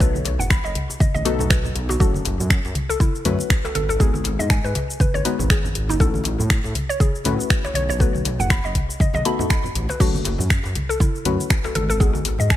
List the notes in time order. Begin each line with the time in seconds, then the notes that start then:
Already playing: B1
0.00 A3 B3 D#4 F#4 A4 B4, kick, djembe bass, shaker
0.15 high conga, shaker
0.25 B1, open hi-hat, djembe slap, muted conga, djembe tone
0.39 F#1 F#5, low conga, shaker
0.50 B5, finger snap, kick, djembe tone, shaker
0.64 F#1 D#5, djembe slap, shaker
0.75 open hi-hat, mid tom, muted conga, djembe bass
0.90 djembe tone, shaker
0.99 D#5, kick, mid tom, muted conga, low conga, shaker
1.14 A1 D#5, djembe tone, high conga, shaker
1.25 B1 A3 B3 D#4 F#4 A4, open hi-hat
1.39 A3 B3 D#4 F#4 A4, muted conga, low conga, shaker
1.50 B4, finger snap, kick, djembe tone, shaker
1.64 muted conga, low conga, shaker
1.75 B1, open hi-hat, djembe tone
1.89 F#4, djembe slap, muted conga, shaker
2.00 F#1 F#3 A3 C#4 F#4 A4, kick, djembe tone, djembe bass, shaker
2.14 high conga, shaker
2.25 F#1, open hi-hat, djembe slap, muted conga, djembe tone
2.39 F#2, low conga, shaker
2.50 finger snap, kick, muted conga, shaker
2.64 F#2, djembe slap, djembe tone, shaker
2.75 open hi-hat, mid tom, muted conga, djembe bass
2.89 A4, djembe tone, shaker
3.00 E4, kick, mid tom, shaker
3.15 shaker
3.25 F#2 F#3 A3 C#4 F#4 B4, open hi-hat, djembe slap, high conga, djembe tone
3.39 muted conga, shaker
3.50 finger snap, kick, djembe tone, shaker
3.64 A4, muted conga, djembe slap, shaker
3.75 G#1 A4, open hi-hat, high conga
3.89 A4, muted conga, djembe tone, shaker
3.99 G#3 B3 D#4 F#4 G#4, kick, djembe bass, shaker
4.14 djembe tone, high conga, shaker
4.24 G#1, open hi-hat, djembe slap, muted conga
4.39 G#2 D#5, low conga, shaker
4.50 G#5, finger snap, kick, muted conga, djembe tone, shaker
4.64 G#2 B4, djembe slap, shaker
4.75 open hi-hat, mid tom, muted conga, djembe tone, djembe bass
4.90 shaker
5.00 B4, kick, mid tom, muted conga, low conga, shaker
5.14 G#1 C#5, djembe tone, high conga, shaker
5.25 G#3 B3 D#4 F#4 B4, open hi-hat
5.39 G#1, muted conga, djembe tone, low conga, shaker
5.50 G#4, finger snap, kick, shaker
5.64 muted conga, low conga, shaker
5.75 open hi-hat, djembe tone
5.89 F#1 D#4, muted conga, djembe slap, shaker
6.00 A1 A3 C#4 E4 F#4 A4, kick, djembe tone, djembe bass, shaker
6.14 high conga, shaker
6.24 A1, open hi-hat, djembe slap, muted conga
6.39 A2, djembe tone, low conga, shaker
6.50 finger snap, kick, muted conga, shaker
6.64 A2, djembe slap, djembe tone, shaker
6.75 open hi-hat, mid tom, muted conga, djembe bass
6.89 C#5, shaker
7.00 G#4, kick, mid tom, muted conga, djembe tone, shaker
7.15 shaker
7.24 A2 A3 C#4 E4 F#4 B4, open hi-hat, djembe slap, djembe tone, high conga
7.39 muted conga, shaker
7.50 finger snap, kick, shaker
7.64 C#5, muted conga, djembe slap, djembe tone, shaker
7.74 B1 C#5, open hi-hat, high conga
7.89 C#5, muted conga, djembe tone, shaker
7.99 A3 B3 D#4 F#4 A4 B4, kick, djembe bass, shaker
8.15 high conga, shaker
8.25 B1, open hi-hat, muted conga, djembe slap, djembe tone
8.39 F#1 F#5, low conga, shaker
8.50 B5, finger snap, kick, muted conga, high conga, djembe tone, shaker
8.64 F#1 D#5, djembe slap, shaker
8.75 kick, open hi-hat, mid tom, muted conga, djembe bass
8.89 djembe tone, shaker
9.00 D#5, kick, mid tom, muted conga, low conga, shaker
9.13 B1 D#5, djembe slap, high conga, djembe tone, shaker
9.25 A3 B3 D#4 F#4 A4 B5, open hi-hat
9.39 A3 B3 D#4 F#4 A4, muted conga, low conga, shaker
9.50 B5, finger snap, kick, djembe tone, shaker
9.64 muted conga, low conga, shaker
9.75 A1, open hi-hat, djembe tone
9.89 B4, djembe slap, muted conga, shaker
10.00 F#1 F#3 A3 C#4 F#4 A4, kick, crash, djembe tone, djembe bass, shaker
10.14 high conga, shaker
10.25 F#1, open hi-hat, djembe slap, muted conga, djembe tone
10.39 F#2, low conga, shaker
10.50 finger snap, kick, shaker
10.63 F#2, djembe slap, djembe tone, shaker
10.75 open hi-hat, mid tom, muted conga, djembe bass
10.89 A4, djembe tone, shaker
11.00 E4, kick, mid tom, muted conga, shaker
11.16 shaker
11.25 F#2 F#3 A3 C#4 F#4 B4, open hi-hat, djembe slap, djembe tone, high conga
11.40 muted conga, shaker
11.50 finger snap, kick, djembe tone, shaker
11.64 A4, djembe slap, muted conga, shaker
11.75 G#1 A4, open hi-hat, high conga
11.89 A4, muted conga, djembe tone, shaker
12.00 G#3 B3 D#4 F#4 G#4, kick, djembe bass, shaker
12.13 djembe tone, high conga, shaker
12.25 G#1, open hi-hat, djembe slap, muted conga
12.39 G#2 D#5, low conga, shaker
12.50 G#5, finger snap, kick, djembe tone, shaker